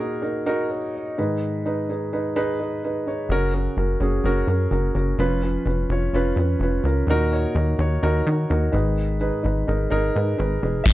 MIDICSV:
0, 0, Header, 1, 4, 480
1, 0, Start_track
1, 0, Tempo, 472590
1, 1432, Time_signature, 4, 2, 24, 8
1, 11101, End_track
2, 0, Start_track
2, 0, Title_t, "Grand piano"
2, 0, Program_c, 0, 0
2, 0, Control_c, 0, 64, 127
2, 0, Note_on_c, 0, 46, 62
2, 0, Note_on_c, 0, 63, 60
2, 0, Note_on_c, 0, 66, 57
2, 0, Note_on_c, 0, 68, 71
2, 0, Note_on_c, 0, 70, 111
2, 187, Note_off_c, 0, 46, 0
2, 208, Note_off_c, 0, 63, 0
2, 211, Note_off_c, 0, 66, 0
2, 213, Note_off_c, 0, 68, 0
2, 223, Note_on_c, 0, 63, 68
2, 230, Note_off_c, 0, 70, 0
2, 230, Note_on_c, 0, 70, 80
2, 231, Note_on_c, 0, 66, 60
2, 448, Note_off_c, 0, 63, 0
2, 452, Note_off_c, 0, 66, 0
2, 452, Note_off_c, 0, 70, 0
2, 470, Note_on_c, 0, 63, 92
2, 471, Note_on_c, 0, 66, 83
2, 475, Note_on_c, 0, 70, 91
2, 692, Note_off_c, 0, 63, 0
2, 692, Note_off_c, 0, 66, 0
2, 694, Note_off_c, 0, 70, 0
2, 719, Note_on_c, 0, 73, 51
2, 726, Note_on_c, 0, 70, 44
2, 943, Note_off_c, 0, 73, 0
2, 947, Note_off_c, 0, 70, 0
2, 965, Note_on_c, 0, 75, 54
2, 1198, Note_on_c, 0, 63, 70
2, 1198, Note_on_c, 0, 68, 63
2, 1199, Note_on_c, 0, 51, 57
2, 1202, Note_on_c, 0, 44, 60
2, 1203, Control_c, 0, 64, 0
2, 1204, Note_on_c, 0, 71, 78
2, 1369, Control_c, 0, 64, 127
2, 1415, Note_off_c, 0, 75, 0
2, 1636, Note_off_c, 0, 63, 0
2, 1636, Note_off_c, 0, 68, 0
2, 1639, Note_off_c, 0, 71, 0
2, 1680, Note_on_c, 0, 68, 61
2, 1683, Note_on_c, 0, 63, 73
2, 1691, Note_on_c, 0, 71, 75
2, 1875, Note_off_c, 0, 51, 0
2, 1876, Note_off_c, 0, 44, 0
2, 1896, Note_off_c, 0, 68, 0
2, 1898, Note_off_c, 0, 63, 0
2, 1902, Note_off_c, 0, 71, 0
2, 1923, Note_on_c, 0, 63, 62
2, 1928, Note_on_c, 0, 68, 54
2, 1931, Note_on_c, 0, 71, 66
2, 2138, Note_off_c, 0, 63, 0
2, 2141, Note_off_c, 0, 68, 0
2, 2142, Note_off_c, 0, 71, 0
2, 2162, Note_on_c, 0, 68, 63
2, 2164, Note_on_c, 0, 71, 74
2, 2165, Note_on_c, 0, 63, 68
2, 2378, Note_off_c, 0, 68, 0
2, 2378, Note_off_c, 0, 71, 0
2, 2379, Note_off_c, 0, 63, 0
2, 2398, Note_on_c, 0, 63, 93
2, 2398, Note_on_c, 0, 68, 82
2, 2401, Note_on_c, 0, 71, 101
2, 2615, Note_off_c, 0, 68, 0
2, 2616, Note_off_c, 0, 63, 0
2, 2617, Note_off_c, 0, 71, 0
2, 2637, Note_on_c, 0, 63, 60
2, 2642, Note_on_c, 0, 68, 61
2, 2855, Note_off_c, 0, 63, 0
2, 2858, Note_off_c, 0, 68, 0
2, 2886, Note_on_c, 0, 63, 63
2, 2888, Note_on_c, 0, 68, 63
2, 2892, Note_on_c, 0, 71, 71
2, 3099, Note_off_c, 0, 63, 0
2, 3101, Note_off_c, 0, 68, 0
2, 3102, Note_off_c, 0, 71, 0
2, 3117, Note_on_c, 0, 63, 64
2, 3124, Note_on_c, 0, 68, 54
2, 3126, Note_on_c, 0, 73, 72
2, 3335, Note_off_c, 0, 63, 0
2, 3339, Note_off_c, 0, 68, 0
2, 3340, Note_off_c, 0, 73, 0
2, 3363, Control_c, 0, 64, 0
2, 3364, Note_on_c, 0, 61, 85
2, 3366, Note_on_c, 0, 66, 85
2, 3369, Note_on_c, 0, 49, 63
2, 3369, Note_on_c, 0, 70, 108
2, 3513, Control_c, 0, 64, 127
2, 3578, Note_off_c, 0, 61, 0
2, 3579, Note_off_c, 0, 66, 0
2, 3581, Note_off_c, 0, 70, 0
2, 3594, Note_on_c, 0, 61, 66
2, 3598, Note_on_c, 0, 66, 62
2, 3600, Note_on_c, 0, 70, 71
2, 3813, Note_off_c, 0, 61, 0
2, 3815, Note_off_c, 0, 66, 0
2, 3817, Note_off_c, 0, 70, 0
2, 3837, Note_on_c, 0, 61, 60
2, 3840, Note_on_c, 0, 66, 57
2, 3845, Note_on_c, 0, 70, 69
2, 4040, Note_off_c, 0, 49, 0
2, 4055, Note_off_c, 0, 61, 0
2, 4056, Note_off_c, 0, 66, 0
2, 4059, Note_off_c, 0, 70, 0
2, 4075, Note_on_c, 0, 61, 73
2, 4080, Note_on_c, 0, 66, 64
2, 4084, Note_on_c, 0, 68, 74
2, 4294, Note_off_c, 0, 61, 0
2, 4296, Note_off_c, 0, 66, 0
2, 4299, Note_off_c, 0, 68, 0
2, 4321, Note_on_c, 0, 70, 96
2, 4322, Note_on_c, 0, 61, 90
2, 4326, Note_on_c, 0, 66, 84
2, 4536, Note_off_c, 0, 61, 0
2, 4536, Note_off_c, 0, 66, 0
2, 4537, Note_off_c, 0, 70, 0
2, 4551, Note_on_c, 0, 61, 64
2, 4552, Note_on_c, 0, 66, 54
2, 4559, Note_on_c, 0, 70, 73
2, 4772, Note_off_c, 0, 61, 0
2, 4772, Note_off_c, 0, 66, 0
2, 4776, Note_off_c, 0, 70, 0
2, 4788, Note_on_c, 0, 61, 64
2, 4793, Note_on_c, 0, 66, 62
2, 4793, Note_on_c, 0, 70, 77
2, 5010, Note_off_c, 0, 61, 0
2, 5013, Note_off_c, 0, 66, 0
2, 5013, Note_off_c, 0, 70, 0
2, 5025, Note_on_c, 0, 61, 64
2, 5028, Note_on_c, 0, 66, 59
2, 5032, Note_on_c, 0, 70, 71
2, 5249, Note_off_c, 0, 61, 0
2, 5250, Note_off_c, 0, 66, 0
2, 5252, Note_off_c, 0, 70, 0
2, 5272, Note_on_c, 0, 53, 65
2, 5275, Note_on_c, 0, 61, 87
2, 5276, Note_on_c, 0, 65, 83
2, 5279, Note_on_c, 0, 71, 103
2, 5284, Control_c, 0, 64, 0
2, 5469, Control_c, 0, 64, 127
2, 5494, Note_off_c, 0, 61, 0
2, 5494, Note_off_c, 0, 65, 0
2, 5496, Note_off_c, 0, 71, 0
2, 5514, Note_on_c, 0, 61, 72
2, 5515, Note_on_c, 0, 65, 61
2, 5522, Note_on_c, 0, 71, 75
2, 5733, Note_off_c, 0, 61, 0
2, 5734, Note_off_c, 0, 65, 0
2, 5737, Note_off_c, 0, 71, 0
2, 5750, Note_on_c, 0, 61, 67
2, 5752, Note_on_c, 0, 65, 57
2, 5760, Note_on_c, 0, 71, 71
2, 5951, Note_off_c, 0, 53, 0
2, 5971, Note_off_c, 0, 61, 0
2, 5972, Note_off_c, 0, 65, 0
2, 5976, Note_off_c, 0, 71, 0
2, 6005, Note_on_c, 0, 61, 67
2, 6006, Note_on_c, 0, 65, 64
2, 6009, Note_on_c, 0, 73, 76
2, 6219, Note_off_c, 0, 61, 0
2, 6219, Note_off_c, 0, 65, 0
2, 6221, Note_off_c, 0, 73, 0
2, 6239, Note_on_c, 0, 61, 92
2, 6242, Note_on_c, 0, 65, 87
2, 6253, Note_on_c, 0, 71, 98
2, 6456, Note_off_c, 0, 61, 0
2, 6457, Note_off_c, 0, 65, 0
2, 6462, Note_off_c, 0, 71, 0
2, 6492, Note_on_c, 0, 61, 64
2, 6492, Note_on_c, 0, 65, 56
2, 6493, Note_on_c, 0, 71, 69
2, 6702, Note_off_c, 0, 61, 0
2, 6702, Note_off_c, 0, 65, 0
2, 6703, Note_off_c, 0, 71, 0
2, 6727, Note_on_c, 0, 61, 71
2, 6730, Note_on_c, 0, 65, 68
2, 6734, Note_on_c, 0, 71, 77
2, 6940, Note_off_c, 0, 61, 0
2, 6941, Note_off_c, 0, 65, 0
2, 6943, Note_off_c, 0, 71, 0
2, 6959, Note_on_c, 0, 61, 64
2, 6960, Note_on_c, 0, 65, 62
2, 6967, Note_on_c, 0, 70, 75
2, 7175, Note_off_c, 0, 61, 0
2, 7176, Note_off_c, 0, 65, 0
2, 7179, Note_off_c, 0, 70, 0
2, 7204, Control_c, 0, 64, 0
2, 7207, Note_on_c, 0, 63, 96
2, 7213, Note_on_c, 0, 66, 90
2, 7214, Note_on_c, 0, 46, 66
2, 7216, Note_on_c, 0, 70, 107
2, 7391, Control_c, 0, 64, 127
2, 7419, Note_off_c, 0, 63, 0
2, 7422, Note_off_c, 0, 66, 0
2, 7424, Note_off_c, 0, 70, 0
2, 7441, Note_on_c, 0, 66, 65
2, 7444, Note_on_c, 0, 73, 72
2, 7446, Note_on_c, 0, 63, 69
2, 7656, Note_off_c, 0, 66, 0
2, 7658, Note_off_c, 0, 73, 0
2, 7659, Note_off_c, 0, 63, 0
2, 7675, Note_on_c, 0, 63, 66
2, 7679, Note_on_c, 0, 66, 63
2, 7686, Note_on_c, 0, 70, 72
2, 7882, Note_off_c, 0, 46, 0
2, 7894, Note_off_c, 0, 63, 0
2, 7895, Note_off_c, 0, 66, 0
2, 7899, Note_off_c, 0, 70, 0
2, 7912, Note_on_c, 0, 63, 65
2, 7917, Note_on_c, 0, 66, 65
2, 7925, Note_on_c, 0, 73, 81
2, 8132, Note_off_c, 0, 63, 0
2, 8135, Note_off_c, 0, 66, 0
2, 8139, Note_off_c, 0, 73, 0
2, 8153, Note_on_c, 0, 63, 92
2, 8155, Note_on_c, 0, 66, 81
2, 8157, Note_on_c, 0, 70, 103
2, 8372, Note_off_c, 0, 63, 0
2, 8373, Note_off_c, 0, 66, 0
2, 8374, Note_off_c, 0, 70, 0
2, 8394, Note_on_c, 0, 63, 68
2, 8398, Note_on_c, 0, 66, 63
2, 8402, Note_on_c, 0, 70, 69
2, 8613, Note_off_c, 0, 63, 0
2, 8615, Note_off_c, 0, 66, 0
2, 8617, Note_off_c, 0, 70, 0
2, 8631, Note_on_c, 0, 63, 74
2, 8636, Note_on_c, 0, 66, 70
2, 8639, Note_on_c, 0, 70, 77
2, 8845, Note_off_c, 0, 63, 0
2, 8854, Note_off_c, 0, 66, 0
2, 8856, Note_off_c, 0, 70, 0
2, 8858, Note_on_c, 0, 44, 59
2, 8861, Note_on_c, 0, 63, 71
2, 8861, Note_on_c, 0, 68, 62
2, 8863, Note_on_c, 0, 51, 62
2, 8864, Note_on_c, 0, 71, 78
2, 8883, Control_c, 0, 64, 0
2, 9090, Control_c, 0, 64, 127
2, 9307, Note_off_c, 0, 63, 0
2, 9307, Note_off_c, 0, 68, 0
2, 9308, Note_off_c, 0, 71, 0
2, 9350, Note_on_c, 0, 63, 69
2, 9351, Note_on_c, 0, 68, 63
2, 9353, Note_on_c, 0, 71, 79
2, 9544, Note_off_c, 0, 44, 0
2, 9546, Note_off_c, 0, 51, 0
2, 9564, Note_off_c, 0, 63, 0
2, 9569, Note_off_c, 0, 68, 0
2, 9572, Note_off_c, 0, 71, 0
2, 9579, Note_on_c, 0, 63, 64
2, 9584, Note_on_c, 0, 68, 56
2, 9587, Note_on_c, 0, 71, 72
2, 9805, Note_off_c, 0, 63, 0
2, 9808, Note_off_c, 0, 68, 0
2, 9809, Note_off_c, 0, 71, 0
2, 9827, Note_on_c, 0, 63, 72
2, 9830, Note_on_c, 0, 68, 58
2, 9831, Note_on_c, 0, 70, 75
2, 10044, Note_off_c, 0, 63, 0
2, 10049, Note_off_c, 0, 68, 0
2, 10051, Note_off_c, 0, 70, 0
2, 10059, Note_on_c, 0, 63, 88
2, 10064, Note_on_c, 0, 68, 84
2, 10070, Note_on_c, 0, 70, 100
2, 10285, Note_off_c, 0, 63, 0
2, 10288, Note_off_c, 0, 68, 0
2, 10291, Note_off_c, 0, 70, 0
2, 10307, Note_on_c, 0, 63, 58
2, 10312, Note_on_c, 0, 68, 55
2, 10316, Note_on_c, 0, 71, 69
2, 10523, Note_off_c, 0, 63, 0
2, 10527, Note_off_c, 0, 68, 0
2, 10531, Note_off_c, 0, 71, 0
2, 10538, Note_on_c, 0, 63, 65
2, 10542, Note_on_c, 0, 68, 60
2, 10547, Note_on_c, 0, 71, 72
2, 10764, Note_off_c, 0, 63, 0
2, 10767, Note_off_c, 0, 68, 0
2, 10769, Note_off_c, 0, 71, 0
2, 10790, Note_on_c, 0, 68, 63
2, 10794, Note_on_c, 0, 63, 64
2, 10799, Note_on_c, 0, 71, 73
2, 11008, Note_on_c, 0, 76, 91
2, 11011, Note_off_c, 0, 68, 0
2, 11013, Note_off_c, 0, 63, 0
2, 11015, Note_off_c, 0, 71, 0
2, 11035, Note_on_c, 0, 64, 72
2, 11045, Control_c, 0, 64, 0
2, 11101, Note_off_c, 0, 64, 0
2, 11101, Note_off_c, 0, 76, 0
2, 11101, End_track
3, 0, Start_track
3, 0, Title_t, "Analog synth bass"
3, 0, Program_c, 1, 38
3, 3343, Note_on_c, 1, 30, 92
3, 3740, Note_off_c, 1, 30, 0
3, 3830, Note_on_c, 1, 30, 85
3, 4027, Note_off_c, 1, 30, 0
3, 4067, Note_on_c, 1, 30, 86
3, 4265, Note_off_c, 1, 30, 0
3, 4306, Note_on_c, 1, 30, 85
3, 4505, Note_off_c, 1, 30, 0
3, 4544, Note_on_c, 1, 42, 79
3, 4744, Note_off_c, 1, 42, 0
3, 4786, Note_on_c, 1, 30, 96
3, 4985, Note_off_c, 1, 30, 0
3, 5029, Note_on_c, 1, 30, 93
3, 5227, Note_off_c, 1, 30, 0
3, 5267, Note_on_c, 1, 29, 88
3, 5662, Note_off_c, 1, 29, 0
3, 5747, Note_on_c, 1, 29, 88
3, 5945, Note_off_c, 1, 29, 0
3, 5985, Note_on_c, 1, 29, 103
3, 6185, Note_off_c, 1, 29, 0
3, 6231, Note_on_c, 1, 29, 85
3, 6428, Note_off_c, 1, 29, 0
3, 6462, Note_on_c, 1, 41, 86
3, 6663, Note_off_c, 1, 41, 0
3, 6699, Note_on_c, 1, 29, 90
3, 6901, Note_off_c, 1, 29, 0
3, 6946, Note_on_c, 1, 37, 91
3, 7145, Note_off_c, 1, 37, 0
3, 7182, Note_on_c, 1, 39, 85
3, 7579, Note_off_c, 1, 39, 0
3, 7668, Note_on_c, 1, 39, 95
3, 7866, Note_off_c, 1, 39, 0
3, 7910, Note_on_c, 1, 39, 99
3, 8107, Note_off_c, 1, 39, 0
3, 8154, Note_on_c, 1, 39, 97
3, 8350, Note_off_c, 1, 39, 0
3, 8396, Note_on_c, 1, 51, 93
3, 8591, Note_off_c, 1, 51, 0
3, 8636, Note_on_c, 1, 39, 94
3, 8831, Note_off_c, 1, 39, 0
3, 8871, Note_on_c, 1, 32, 91
3, 9461, Note_off_c, 1, 32, 0
3, 9595, Note_on_c, 1, 32, 89
3, 9790, Note_off_c, 1, 32, 0
3, 9837, Note_on_c, 1, 32, 95
3, 10031, Note_off_c, 1, 32, 0
3, 10074, Note_on_c, 1, 32, 93
3, 10269, Note_off_c, 1, 32, 0
3, 10317, Note_on_c, 1, 44, 90
3, 10511, Note_off_c, 1, 44, 0
3, 10556, Note_on_c, 1, 32, 100
3, 10751, Note_off_c, 1, 32, 0
3, 10796, Note_on_c, 1, 29, 81
3, 10991, Note_off_c, 1, 29, 0
3, 11101, End_track
4, 0, Start_track
4, 0, Title_t, "Drums"
4, 11025, Note_on_c, 9, 49, 83
4, 11028, Note_on_c, 9, 36, 98
4, 11101, Note_off_c, 9, 36, 0
4, 11101, Note_off_c, 9, 49, 0
4, 11101, End_track
0, 0, End_of_file